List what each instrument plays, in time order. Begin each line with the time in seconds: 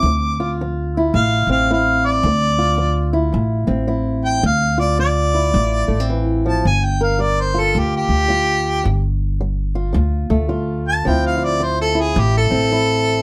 Already playing: steel-string acoustic guitar F4, harmonica D6
0.03 upright bass D2, steel-string acoustic guitar D3
0.40 steel-string acoustic guitar F4
0.61 steel-string acoustic guitar F3
0.97 steel-string acoustic guitar E4
1.14 upright bass A1, steel-string acoustic guitar A2, harmonica F5
1.47 upright bass A1, steel-string acoustic guitar C4
1.51 harmonica F5
1.71 steel-string acoustic guitar F3 E4, harmonica F5
2.06 harmonica D5
2.23 upright bass D2, steel-string acoustic guitar D3
2.59 steel-string acoustic guitar F4
2.78 steel-string acoustic guitar F3
3.13 steel-string acoustic guitar E4
3.32 upright bass A1, steel-string acoustic guitar A2
3.67 upright bass A1, steel-string acoustic guitar C4
3.87 steel-string acoustic guitar F3 E4
4.25 harmonica G5
4.43 upright bass D2, steel-string acoustic guitar D3, harmonica F5
4.78 steel-string acoustic guitar F4, harmonica D5
4.99 steel-string acoustic guitar F3, harmonica D5
5.34 steel-string acoustic guitar E4
5.54 upright bass A1, steel-string acoustic guitar A2
5.88 upright bass A1, steel-string acoustic guitar A3
6.00 steel-string acoustic guitar C4
6.10 steel-string acoustic guitar E3
6.46 steel-string acoustic guitar F3, harmonica A5
6.65 upright bass G1, steel-string acoustic guitar G2, harmonica G#5
6.85 harmonica G5
7.01 steel-string acoustic guitar A#4, harmonica F5
7.19 steel-string acoustic guitar G3, harmonica D5
7.40 harmonica C5
7.54 steel-string acoustic guitar F4
7.60 harmonica A4
7.75 upright bass D2, steel-string acoustic guitar D3, harmonica G4
7.97 harmonica G4
8.09 upright bass D2
8.28 steel-string acoustic guitar G3 F4
8.84 upright bass G1, steel-string acoustic guitar G2
9.41 steel-string acoustic guitar G3
9.75 steel-string acoustic guitar F4
9.93 upright bass D2, steel-string acoustic guitar D3
10.30 upright bass D2, steel-string acoustic guitar A3
10.49 steel-string acoustic guitar G3 F4
10.88 harmonica A5
11.05 upright bass D2, steel-string acoustic guitar D3 F3 C4 E4 F4, harmonica G5
11.26 harmonica F5
11.38 steel-string acoustic guitar F4
11.44 harmonica D5
11.60 steel-string acoustic guitar F3, harmonica C5
11.81 harmonica A4
11.95 steel-string acoustic guitar E4
12.01 harmonica G#4
12.15 upright bass A1, steel-string acoustic guitar A2
12.19 harmonica G4
12.38 harmonica A4
12.51 upright bass A1, steel-string acoustic guitar C4
12.72 steel-string acoustic guitar F3 E4